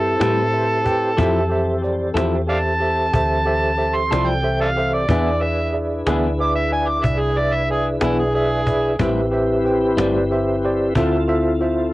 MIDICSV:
0, 0, Header, 1, 7, 480
1, 0, Start_track
1, 0, Key_signature, 0, "minor"
1, 0, Tempo, 651466
1, 874, Time_signature, 12, 3, 24, 8
1, 8792, End_track
2, 0, Start_track
2, 0, Title_t, "Harmonica"
2, 0, Program_c, 0, 22
2, 0, Note_on_c, 0, 69, 127
2, 1330, Note_off_c, 0, 69, 0
2, 1837, Note_on_c, 0, 74, 83
2, 1837, Note_on_c, 0, 77, 83
2, 1837, Note_on_c, 0, 81, 118
2, 1895, Note_off_c, 0, 77, 0
2, 1903, Note_off_c, 0, 74, 0
2, 2916, Note_on_c, 0, 84, 88
2, 2927, Note_off_c, 0, 81, 0
2, 3158, Note_on_c, 0, 79, 87
2, 3169, Note_off_c, 0, 84, 0
2, 3388, Note_off_c, 0, 79, 0
2, 3395, Note_on_c, 0, 69, 65
2, 3395, Note_on_c, 0, 74, 65
2, 3395, Note_on_c, 0, 77, 93
2, 3445, Note_off_c, 0, 69, 0
2, 3454, Note_off_c, 0, 74, 0
2, 3626, Note_off_c, 0, 77, 0
2, 3635, Note_on_c, 0, 74, 88
2, 3997, Note_on_c, 0, 76, 108
2, 4008, Note_off_c, 0, 74, 0
2, 4227, Note_off_c, 0, 76, 0
2, 4722, Note_on_c, 0, 86, 82
2, 4823, Note_off_c, 0, 86, 0
2, 4828, Note_on_c, 0, 76, 100
2, 4941, Note_off_c, 0, 76, 0
2, 4954, Note_on_c, 0, 80, 94
2, 5069, Note_on_c, 0, 86, 87
2, 5080, Note_off_c, 0, 80, 0
2, 5190, Note_on_c, 0, 76, 86
2, 5201, Note_off_c, 0, 86, 0
2, 5302, Note_on_c, 0, 68, 97
2, 5313, Note_off_c, 0, 76, 0
2, 5435, Note_on_c, 0, 74, 104
2, 5446, Note_off_c, 0, 68, 0
2, 5557, Note_on_c, 0, 76, 90
2, 5568, Note_off_c, 0, 74, 0
2, 5666, Note_off_c, 0, 76, 0
2, 5679, Note_on_c, 0, 68, 85
2, 5788, Note_off_c, 0, 68, 0
2, 5912, Note_on_c, 0, 64, 89
2, 6024, Note_off_c, 0, 64, 0
2, 6036, Note_on_c, 0, 68, 84
2, 6146, Note_off_c, 0, 68, 0
2, 6150, Note_on_c, 0, 68, 105
2, 6617, Note_off_c, 0, 68, 0
2, 8792, End_track
3, 0, Start_track
3, 0, Title_t, "Tine electric piano"
3, 0, Program_c, 1, 4
3, 0, Note_on_c, 1, 67, 53
3, 0, Note_on_c, 1, 71, 43
3, 0, Note_on_c, 1, 72, 44
3, 0, Note_on_c, 1, 76, 51
3, 93, Note_off_c, 1, 67, 0
3, 94, Note_off_c, 1, 71, 0
3, 94, Note_off_c, 1, 72, 0
3, 97, Note_off_c, 1, 76, 0
3, 147, Note_on_c, 1, 67, 50
3, 147, Note_on_c, 1, 71, 50
3, 153, Note_on_c, 1, 72, 53
3, 159, Note_on_c, 1, 76, 55
3, 331, Note_off_c, 1, 67, 0
3, 331, Note_off_c, 1, 71, 0
3, 334, Note_off_c, 1, 72, 0
3, 337, Note_off_c, 1, 76, 0
3, 386, Note_on_c, 1, 67, 50
3, 391, Note_on_c, 1, 71, 49
3, 396, Note_on_c, 1, 76, 59
3, 398, Note_on_c, 1, 72, 48
3, 570, Note_off_c, 1, 67, 0
3, 573, Note_off_c, 1, 71, 0
3, 575, Note_off_c, 1, 76, 0
3, 576, Note_off_c, 1, 72, 0
3, 622, Note_on_c, 1, 67, 67
3, 627, Note_on_c, 1, 71, 61
3, 630, Note_on_c, 1, 72, 53
3, 636, Note_on_c, 1, 79, 68
3, 808, Note_off_c, 1, 67, 0
3, 810, Note_off_c, 1, 71, 0
3, 812, Note_off_c, 1, 72, 0
3, 815, Note_off_c, 1, 79, 0
3, 860, Note_on_c, 1, 67, 78
3, 861, Note_on_c, 1, 69, 62
3, 867, Note_on_c, 1, 72, 66
3, 871, Note_on_c, 1, 76, 90
3, 1047, Note_off_c, 1, 67, 0
3, 1047, Note_off_c, 1, 69, 0
3, 1051, Note_off_c, 1, 72, 0
3, 1052, Note_off_c, 1, 76, 0
3, 1102, Note_on_c, 1, 67, 68
3, 1112, Note_on_c, 1, 69, 55
3, 1116, Note_on_c, 1, 72, 60
3, 1117, Note_on_c, 1, 76, 71
3, 1288, Note_off_c, 1, 67, 0
3, 1293, Note_off_c, 1, 69, 0
3, 1295, Note_off_c, 1, 72, 0
3, 1295, Note_off_c, 1, 76, 0
3, 1341, Note_on_c, 1, 67, 61
3, 1347, Note_on_c, 1, 69, 51
3, 1351, Note_on_c, 1, 72, 54
3, 1357, Note_on_c, 1, 74, 70
3, 1527, Note_off_c, 1, 67, 0
3, 1530, Note_off_c, 1, 69, 0
3, 1532, Note_off_c, 1, 72, 0
3, 1535, Note_off_c, 1, 74, 0
3, 1582, Note_on_c, 1, 69, 57
3, 1583, Note_on_c, 1, 67, 58
3, 1584, Note_on_c, 1, 72, 55
3, 1595, Note_on_c, 1, 76, 75
3, 1768, Note_off_c, 1, 67, 0
3, 1768, Note_off_c, 1, 69, 0
3, 1768, Note_off_c, 1, 72, 0
3, 1774, Note_off_c, 1, 76, 0
3, 1820, Note_on_c, 1, 69, 50
3, 1822, Note_on_c, 1, 67, 53
3, 1830, Note_on_c, 1, 72, 48
3, 1834, Note_on_c, 1, 76, 58
3, 2006, Note_off_c, 1, 69, 0
3, 2007, Note_off_c, 1, 67, 0
3, 2011, Note_off_c, 1, 72, 0
3, 2013, Note_off_c, 1, 76, 0
3, 2063, Note_on_c, 1, 67, 56
3, 2067, Note_on_c, 1, 69, 55
3, 2068, Note_on_c, 1, 72, 49
3, 2076, Note_on_c, 1, 76, 63
3, 2248, Note_off_c, 1, 67, 0
3, 2250, Note_off_c, 1, 69, 0
3, 2250, Note_off_c, 1, 72, 0
3, 2254, Note_off_c, 1, 76, 0
3, 2307, Note_on_c, 1, 67, 55
3, 2313, Note_on_c, 1, 69, 52
3, 2320, Note_on_c, 1, 72, 55
3, 2324, Note_on_c, 1, 76, 61
3, 2490, Note_off_c, 1, 67, 0
3, 2492, Note_off_c, 1, 69, 0
3, 2496, Note_off_c, 1, 72, 0
3, 2498, Note_off_c, 1, 76, 0
3, 2545, Note_on_c, 1, 67, 74
3, 2546, Note_on_c, 1, 69, 63
3, 2555, Note_on_c, 1, 76, 71
3, 2556, Note_on_c, 1, 72, 58
3, 2728, Note_off_c, 1, 67, 0
3, 2729, Note_off_c, 1, 69, 0
3, 2734, Note_off_c, 1, 72, 0
3, 2734, Note_off_c, 1, 76, 0
3, 2781, Note_on_c, 1, 67, 57
3, 2783, Note_on_c, 1, 72, 47
3, 2784, Note_on_c, 1, 69, 48
3, 2788, Note_on_c, 1, 76, 61
3, 2966, Note_off_c, 1, 67, 0
3, 2967, Note_off_c, 1, 72, 0
3, 2968, Note_off_c, 1, 69, 0
3, 2970, Note_off_c, 1, 76, 0
3, 3027, Note_on_c, 1, 67, 48
3, 3027, Note_on_c, 1, 69, 53
3, 3037, Note_on_c, 1, 72, 55
3, 3038, Note_on_c, 1, 74, 57
3, 3209, Note_off_c, 1, 67, 0
3, 3209, Note_off_c, 1, 69, 0
3, 3215, Note_off_c, 1, 72, 0
3, 3215, Note_off_c, 1, 74, 0
3, 3260, Note_on_c, 1, 67, 56
3, 3267, Note_on_c, 1, 69, 56
3, 3271, Note_on_c, 1, 72, 51
3, 3274, Note_on_c, 1, 76, 61
3, 3446, Note_off_c, 1, 67, 0
3, 3450, Note_off_c, 1, 69, 0
3, 3451, Note_off_c, 1, 72, 0
3, 3453, Note_off_c, 1, 76, 0
3, 3508, Note_on_c, 1, 67, 60
3, 3515, Note_on_c, 1, 69, 51
3, 3519, Note_on_c, 1, 72, 55
3, 3524, Note_on_c, 1, 76, 64
3, 3690, Note_off_c, 1, 67, 0
3, 3693, Note_off_c, 1, 69, 0
3, 3695, Note_off_c, 1, 72, 0
3, 3698, Note_off_c, 1, 76, 0
3, 3752, Note_on_c, 1, 71, 57
3, 3754, Note_on_c, 1, 68, 68
3, 3760, Note_on_c, 1, 74, 59
3, 3765, Note_on_c, 1, 76, 75
3, 3932, Note_off_c, 1, 71, 0
3, 3933, Note_off_c, 1, 68, 0
3, 3936, Note_off_c, 1, 74, 0
3, 3938, Note_off_c, 1, 76, 0
3, 3988, Note_on_c, 1, 71, 55
3, 3992, Note_on_c, 1, 68, 56
3, 3997, Note_on_c, 1, 76, 67
3, 3999, Note_on_c, 1, 74, 54
3, 4170, Note_off_c, 1, 71, 0
3, 4172, Note_off_c, 1, 68, 0
3, 4175, Note_off_c, 1, 74, 0
3, 4175, Note_off_c, 1, 76, 0
3, 4219, Note_on_c, 1, 68, 58
3, 4224, Note_on_c, 1, 71, 46
3, 4226, Note_on_c, 1, 74, 53
3, 4234, Note_on_c, 1, 76, 56
3, 4405, Note_off_c, 1, 68, 0
3, 4408, Note_off_c, 1, 71, 0
3, 4409, Note_off_c, 1, 74, 0
3, 4413, Note_off_c, 1, 76, 0
3, 4466, Note_on_c, 1, 68, 60
3, 4471, Note_on_c, 1, 71, 66
3, 4473, Note_on_c, 1, 74, 66
3, 4476, Note_on_c, 1, 76, 72
3, 4649, Note_off_c, 1, 68, 0
3, 4652, Note_off_c, 1, 71, 0
3, 4652, Note_off_c, 1, 74, 0
3, 4654, Note_off_c, 1, 76, 0
3, 4708, Note_on_c, 1, 68, 54
3, 4709, Note_on_c, 1, 71, 47
3, 4718, Note_on_c, 1, 74, 47
3, 4719, Note_on_c, 1, 76, 53
3, 4890, Note_off_c, 1, 68, 0
3, 4890, Note_off_c, 1, 71, 0
3, 4895, Note_off_c, 1, 74, 0
3, 4896, Note_off_c, 1, 76, 0
3, 4949, Note_on_c, 1, 68, 56
3, 4953, Note_on_c, 1, 71, 53
3, 4953, Note_on_c, 1, 74, 55
3, 4961, Note_on_c, 1, 76, 59
3, 5130, Note_off_c, 1, 68, 0
3, 5132, Note_off_c, 1, 71, 0
3, 5132, Note_off_c, 1, 74, 0
3, 5136, Note_off_c, 1, 76, 0
3, 5182, Note_on_c, 1, 68, 55
3, 5185, Note_on_c, 1, 71, 55
3, 5195, Note_on_c, 1, 74, 52
3, 5195, Note_on_c, 1, 76, 58
3, 5367, Note_off_c, 1, 68, 0
3, 5369, Note_off_c, 1, 71, 0
3, 5374, Note_off_c, 1, 74, 0
3, 5374, Note_off_c, 1, 76, 0
3, 5432, Note_on_c, 1, 68, 58
3, 5438, Note_on_c, 1, 74, 55
3, 5439, Note_on_c, 1, 71, 54
3, 5446, Note_on_c, 1, 76, 70
3, 5612, Note_off_c, 1, 68, 0
3, 5615, Note_off_c, 1, 74, 0
3, 5616, Note_off_c, 1, 71, 0
3, 5619, Note_off_c, 1, 76, 0
3, 5671, Note_on_c, 1, 68, 55
3, 5675, Note_on_c, 1, 71, 44
3, 5679, Note_on_c, 1, 74, 48
3, 5681, Note_on_c, 1, 76, 56
3, 5851, Note_off_c, 1, 68, 0
3, 5854, Note_off_c, 1, 71, 0
3, 5856, Note_off_c, 1, 74, 0
3, 5856, Note_off_c, 1, 76, 0
3, 5912, Note_on_c, 1, 68, 51
3, 5912, Note_on_c, 1, 71, 54
3, 5919, Note_on_c, 1, 74, 53
3, 5922, Note_on_c, 1, 76, 63
3, 6092, Note_off_c, 1, 68, 0
3, 6092, Note_off_c, 1, 71, 0
3, 6095, Note_off_c, 1, 74, 0
3, 6097, Note_off_c, 1, 76, 0
3, 6150, Note_on_c, 1, 68, 60
3, 6154, Note_on_c, 1, 74, 59
3, 6155, Note_on_c, 1, 71, 53
3, 6163, Note_on_c, 1, 76, 71
3, 6331, Note_off_c, 1, 68, 0
3, 6333, Note_off_c, 1, 74, 0
3, 6334, Note_off_c, 1, 71, 0
3, 6338, Note_off_c, 1, 76, 0
3, 6385, Note_on_c, 1, 68, 54
3, 6389, Note_on_c, 1, 71, 51
3, 6394, Note_on_c, 1, 74, 54
3, 6399, Note_on_c, 1, 76, 63
3, 6569, Note_off_c, 1, 68, 0
3, 6571, Note_off_c, 1, 71, 0
3, 6574, Note_off_c, 1, 74, 0
3, 6576, Note_off_c, 1, 76, 0
3, 6626, Note_on_c, 1, 67, 64
3, 6630, Note_on_c, 1, 71, 62
3, 6637, Note_on_c, 1, 72, 56
3, 6642, Note_on_c, 1, 76, 66
3, 6809, Note_off_c, 1, 67, 0
3, 6811, Note_off_c, 1, 71, 0
3, 6815, Note_off_c, 1, 72, 0
3, 6818, Note_off_c, 1, 76, 0
3, 6863, Note_on_c, 1, 67, 69
3, 6867, Note_on_c, 1, 71, 60
3, 6873, Note_on_c, 1, 72, 63
3, 6877, Note_on_c, 1, 76, 73
3, 7048, Note_off_c, 1, 67, 0
3, 7050, Note_off_c, 1, 71, 0
3, 7053, Note_off_c, 1, 72, 0
3, 7055, Note_off_c, 1, 76, 0
3, 7104, Note_on_c, 1, 67, 64
3, 7109, Note_on_c, 1, 72, 56
3, 7110, Note_on_c, 1, 71, 58
3, 7119, Note_on_c, 1, 79, 62
3, 7289, Note_off_c, 1, 67, 0
3, 7291, Note_off_c, 1, 72, 0
3, 7292, Note_off_c, 1, 71, 0
3, 7296, Note_off_c, 1, 79, 0
3, 7358, Note_on_c, 1, 67, 61
3, 7360, Note_on_c, 1, 71, 60
3, 7367, Note_on_c, 1, 72, 63
3, 7367, Note_on_c, 1, 74, 74
3, 7536, Note_off_c, 1, 67, 0
3, 7537, Note_off_c, 1, 71, 0
3, 7540, Note_off_c, 1, 72, 0
3, 7541, Note_off_c, 1, 74, 0
3, 7596, Note_on_c, 1, 67, 63
3, 7602, Note_on_c, 1, 71, 56
3, 7603, Note_on_c, 1, 72, 66
3, 7603, Note_on_c, 1, 76, 70
3, 7775, Note_off_c, 1, 67, 0
3, 7778, Note_off_c, 1, 71, 0
3, 7778, Note_off_c, 1, 72, 0
3, 7778, Note_off_c, 1, 76, 0
3, 7843, Note_on_c, 1, 67, 67
3, 7843, Note_on_c, 1, 71, 61
3, 7845, Note_on_c, 1, 72, 67
3, 7851, Note_on_c, 1, 74, 73
3, 8018, Note_off_c, 1, 67, 0
3, 8018, Note_off_c, 1, 71, 0
3, 8020, Note_off_c, 1, 72, 0
3, 8022, Note_off_c, 1, 74, 0
3, 8070, Note_on_c, 1, 65, 69
3, 8072, Note_on_c, 1, 69, 62
3, 8082, Note_on_c, 1, 72, 59
3, 8082, Note_on_c, 1, 76, 76
3, 8252, Note_off_c, 1, 65, 0
3, 8253, Note_off_c, 1, 69, 0
3, 8258, Note_off_c, 1, 72, 0
3, 8258, Note_off_c, 1, 76, 0
3, 8311, Note_on_c, 1, 65, 69
3, 8313, Note_on_c, 1, 69, 62
3, 8317, Note_on_c, 1, 72, 60
3, 8319, Note_on_c, 1, 76, 83
3, 8493, Note_off_c, 1, 65, 0
3, 8494, Note_off_c, 1, 69, 0
3, 8496, Note_off_c, 1, 72, 0
3, 8497, Note_off_c, 1, 76, 0
3, 8552, Note_on_c, 1, 65, 64
3, 8555, Note_on_c, 1, 69, 54
3, 8555, Note_on_c, 1, 72, 60
3, 8562, Note_on_c, 1, 76, 68
3, 8733, Note_off_c, 1, 65, 0
3, 8735, Note_off_c, 1, 69, 0
3, 8735, Note_off_c, 1, 72, 0
3, 8739, Note_off_c, 1, 76, 0
3, 8792, End_track
4, 0, Start_track
4, 0, Title_t, "Tonewheel organ"
4, 0, Program_c, 2, 16
4, 0, Note_on_c, 2, 60, 71
4, 0, Note_on_c, 2, 64, 61
4, 0, Note_on_c, 2, 67, 67
4, 0, Note_on_c, 2, 72, 67
4, 849, Note_off_c, 2, 64, 0
4, 850, Note_off_c, 2, 72, 0
4, 851, Note_off_c, 2, 60, 0
4, 855, Note_off_c, 2, 67, 0
4, 886, Note_on_c, 2, 69, 69
4, 888, Note_on_c, 2, 60, 72
4, 891, Note_on_c, 2, 67, 70
4, 892, Note_on_c, 2, 52, 66
4, 3729, Note_off_c, 2, 69, 0
4, 3730, Note_off_c, 2, 60, 0
4, 3731, Note_off_c, 2, 67, 0
4, 3732, Note_off_c, 2, 52, 0
4, 3746, Note_on_c, 2, 64, 66
4, 3753, Note_on_c, 2, 71, 71
4, 3755, Note_on_c, 2, 62, 68
4, 3759, Note_on_c, 2, 68, 73
4, 6601, Note_off_c, 2, 64, 0
4, 6605, Note_off_c, 2, 62, 0
4, 6605, Note_off_c, 2, 71, 0
4, 6608, Note_off_c, 2, 68, 0
4, 6630, Note_on_c, 2, 67, 73
4, 6632, Note_on_c, 2, 60, 68
4, 6632, Note_on_c, 2, 64, 68
4, 6633, Note_on_c, 2, 71, 73
4, 8058, Note_off_c, 2, 67, 0
4, 8059, Note_off_c, 2, 60, 0
4, 8059, Note_off_c, 2, 64, 0
4, 8060, Note_off_c, 2, 71, 0
4, 8071, Note_on_c, 2, 69, 61
4, 8075, Note_on_c, 2, 60, 63
4, 8075, Note_on_c, 2, 64, 66
4, 8075, Note_on_c, 2, 65, 69
4, 8792, Note_off_c, 2, 60, 0
4, 8792, Note_off_c, 2, 64, 0
4, 8792, Note_off_c, 2, 65, 0
4, 8792, Note_off_c, 2, 69, 0
4, 8792, End_track
5, 0, Start_track
5, 0, Title_t, "Clean electric guitar"
5, 0, Program_c, 3, 27
5, 148, Note_on_c, 3, 64, 71
5, 149, Note_on_c, 3, 60, 72
5, 157, Note_on_c, 3, 55, 65
5, 160, Note_on_c, 3, 45, 51
5, 295, Note_off_c, 3, 64, 0
5, 296, Note_off_c, 3, 60, 0
5, 300, Note_off_c, 3, 55, 0
5, 301, Note_off_c, 3, 45, 0
5, 868, Note_on_c, 3, 53, 82
5, 874, Note_on_c, 3, 60, 80
5, 881, Note_on_c, 3, 64, 85
5, 883, Note_on_c, 3, 69, 80
5, 1015, Note_off_c, 3, 53, 0
5, 1018, Note_off_c, 3, 60, 0
5, 1021, Note_off_c, 3, 64, 0
5, 1022, Note_off_c, 3, 69, 0
5, 1578, Note_on_c, 3, 69, 73
5, 1585, Note_on_c, 3, 64, 70
5, 1594, Note_on_c, 3, 53, 60
5, 1594, Note_on_c, 3, 60, 67
5, 1730, Note_off_c, 3, 69, 0
5, 1733, Note_off_c, 3, 64, 0
5, 1738, Note_off_c, 3, 53, 0
5, 1738, Note_off_c, 3, 60, 0
5, 3027, Note_on_c, 3, 69, 70
5, 3033, Note_on_c, 3, 64, 62
5, 3045, Note_on_c, 3, 60, 66
5, 3050, Note_on_c, 3, 53, 61
5, 3174, Note_off_c, 3, 69, 0
5, 3176, Note_off_c, 3, 64, 0
5, 3183, Note_off_c, 3, 60, 0
5, 3185, Note_off_c, 3, 53, 0
5, 3750, Note_on_c, 3, 52, 61
5, 3756, Note_on_c, 3, 59, 68
5, 3762, Note_on_c, 3, 62, 79
5, 3765, Note_on_c, 3, 68, 80
5, 3895, Note_off_c, 3, 52, 0
5, 3898, Note_off_c, 3, 59, 0
5, 3901, Note_off_c, 3, 62, 0
5, 3903, Note_off_c, 3, 68, 0
5, 4474, Note_on_c, 3, 68, 78
5, 4481, Note_on_c, 3, 59, 67
5, 4482, Note_on_c, 3, 62, 80
5, 4494, Note_on_c, 3, 52, 62
5, 4617, Note_off_c, 3, 68, 0
5, 4621, Note_off_c, 3, 59, 0
5, 4621, Note_off_c, 3, 62, 0
5, 4627, Note_off_c, 3, 52, 0
5, 5904, Note_on_c, 3, 68, 69
5, 5910, Note_on_c, 3, 62, 64
5, 5912, Note_on_c, 3, 59, 66
5, 5921, Note_on_c, 3, 52, 58
5, 6052, Note_off_c, 3, 68, 0
5, 6055, Note_off_c, 3, 62, 0
5, 6056, Note_off_c, 3, 59, 0
5, 6061, Note_off_c, 3, 52, 0
5, 6627, Note_on_c, 3, 45, 72
5, 6631, Note_on_c, 3, 55, 74
5, 6633, Note_on_c, 3, 60, 82
5, 6639, Note_on_c, 3, 64, 81
5, 6774, Note_off_c, 3, 45, 0
5, 6776, Note_off_c, 3, 55, 0
5, 6777, Note_off_c, 3, 60, 0
5, 6780, Note_off_c, 3, 64, 0
5, 7346, Note_on_c, 3, 64, 76
5, 7350, Note_on_c, 3, 60, 72
5, 7356, Note_on_c, 3, 55, 72
5, 7361, Note_on_c, 3, 45, 59
5, 7494, Note_off_c, 3, 64, 0
5, 7496, Note_off_c, 3, 60, 0
5, 7499, Note_off_c, 3, 55, 0
5, 7501, Note_off_c, 3, 45, 0
5, 8071, Note_on_c, 3, 50, 78
5, 8076, Note_on_c, 3, 60, 84
5, 8082, Note_on_c, 3, 65, 79
5, 8089, Note_on_c, 3, 69, 92
5, 8216, Note_off_c, 3, 50, 0
5, 8219, Note_off_c, 3, 60, 0
5, 8222, Note_off_c, 3, 65, 0
5, 8225, Note_off_c, 3, 69, 0
5, 8792, End_track
6, 0, Start_track
6, 0, Title_t, "Fingered electric bass"
6, 0, Program_c, 4, 33
6, 0, Note_on_c, 4, 43, 87
6, 132, Note_off_c, 4, 43, 0
6, 152, Note_on_c, 4, 45, 85
6, 851, Note_off_c, 4, 45, 0
6, 873, Note_on_c, 4, 41, 79
6, 1571, Note_off_c, 4, 41, 0
6, 1582, Note_on_c, 4, 40, 92
6, 2285, Note_off_c, 4, 40, 0
6, 2311, Note_on_c, 4, 38, 90
6, 3010, Note_off_c, 4, 38, 0
6, 3033, Note_on_c, 4, 36, 84
6, 3731, Note_off_c, 4, 36, 0
6, 3748, Note_on_c, 4, 40, 82
6, 4448, Note_off_c, 4, 40, 0
6, 4470, Note_on_c, 4, 38, 95
6, 5169, Note_off_c, 4, 38, 0
6, 5187, Note_on_c, 4, 36, 86
6, 5888, Note_off_c, 4, 36, 0
6, 5910, Note_on_c, 4, 35, 92
6, 6610, Note_off_c, 4, 35, 0
6, 6628, Note_on_c, 4, 33, 90
6, 7329, Note_off_c, 4, 33, 0
6, 7346, Note_on_c, 4, 31, 91
6, 8049, Note_off_c, 4, 31, 0
6, 8073, Note_on_c, 4, 38, 88
6, 8772, Note_off_c, 4, 38, 0
6, 8792, End_track
7, 0, Start_track
7, 0, Title_t, "Cajon"
7, 155, Note_on_c, 9, 38, 114
7, 229, Note_off_c, 9, 38, 0
7, 393, Note_on_c, 9, 38, 31
7, 467, Note_off_c, 9, 38, 0
7, 632, Note_on_c, 9, 36, 74
7, 640, Note_on_c, 9, 38, 33
7, 705, Note_off_c, 9, 36, 0
7, 714, Note_off_c, 9, 38, 0
7, 871, Note_on_c, 9, 36, 107
7, 945, Note_off_c, 9, 36, 0
7, 1112, Note_on_c, 9, 38, 33
7, 1186, Note_off_c, 9, 38, 0
7, 1352, Note_on_c, 9, 38, 36
7, 1359, Note_off_c, 9, 38, 0
7, 1359, Note_on_c, 9, 38, 28
7, 1433, Note_off_c, 9, 38, 0
7, 1597, Note_on_c, 9, 38, 101
7, 1670, Note_off_c, 9, 38, 0
7, 1837, Note_on_c, 9, 38, 32
7, 1911, Note_off_c, 9, 38, 0
7, 2073, Note_on_c, 9, 38, 35
7, 2147, Note_off_c, 9, 38, 0
7, 2310, Note_on_c, 9, 36, 116
7, 2384, Note_off_c, 9, 36, 0
7, 2550, Note_on_c, 9, 38, 39
7, 2623, Note_off_c, 9, 38, 0
7, 2796, Note_on_c, 9, 38, 33
7, 2870, Note_off_c, 9, 38, 0
7, 3039, Note_on_c, 9, 38, 103
7, 3113, Note_off_c, 9, 38, 0
7, 3272, Note_on_c, 9, 38, 30
7, 3346, Note_off_c, 9, 38, 0
7, 3513, Note_on_c, 9, 38, 37
7, 3521, Note_off_c, 9, 38, 0
7, 3521, Note_on_c, 9, 38, 35
7, 3594, Note_off_c, 9, 38, 0
7, 3748, Note_on_c, 9, 36, 112
7, 3822, Note_off_c, 9, 36, 0
7, 3987, Note_on_c, 9, 38, 38
7, 4060, Note_off_c, 9, 38, 0
7, 4225, Note_on_c, 9, 38, 30
7, 4232, Note_off_c, 9, 38, 0
7, 4232, Note_on_c, 9, 38, 31
7, 4306, Note_off_c, 9, 38, 0
7, 4469, Note_on_c, 9, 38, 119
7, 4543, Note_off_c, 9, 38, 0
7, 4707, Note_on_c, 9, 38, 35
7, 4781, Note_off_c, 9, 38, 0
7, 4945, Note_on_c, 9, 38, 33
7, 5019, Note_off_c, 9, 38, 0
7, 5186, Note_on_c, 9, 36, 102
7, 5260, Note_off_c, 9, 36, 0
7, 5423, Note_on_c, 9, 38, 37
7, 5496, Note_off_c, 9, 38, 0
7, 5661, Note_on_c, 9, 38, 31
7, 5735, Note_off_c, 9, 38, 0
7, 5902, Note_on_c, 9, 38, 109
7, 5975, Note_off_c, 9, 38, 0
7, 6144, Note_on_c, 9, 38, 32
7, 6218, Note_off_c, 9, 38, 0
7, 6385, Note_on_c, 9, 36, 84
7, 6459, Note_off_c, 9, 36, 0
7, 6627, Note_on_c, 9, 36, 118
7, 6700, Note_off_c, 9, 36, 0
7, 6873, Note_on_c, 9, 38, 39
7, 6947, Note_off_c, 9, 38, 0
7, 7111, Note_on_c, 9, 38, 35
7, 7119, Note_off_c, 9, 38, 0
7, 7119, Note_on_c, 9, 38, 31
7, 7192, Note_off_c, 9, 38, 0
7, 7353, Note_on_c, 9, 38, 112
7, 7427, Note_off_c, 9, 38, 0
7, 7593, Note_on_c, 9, 38, 32
7, 7667, Note_off_c, 9, 38, 0
7, 7830, Note_on_c, 9, 38, 32
7, 7904, Note_off_c, 9, 38, 0
7, 8070, Note_on_c, 9, 36, 106
7, 8144, Note_off_c, 9, 36, 0
7, 8309, Note_on_c, 9, 38, 36
7, 8383, Note_off_c, 9, 38, 0
7, 8550, Note_on_c, 9, 38, 31
7, 8624, Note_off_c, 9, 38, 0
7, 8792, End_track
0, 0, End_of_file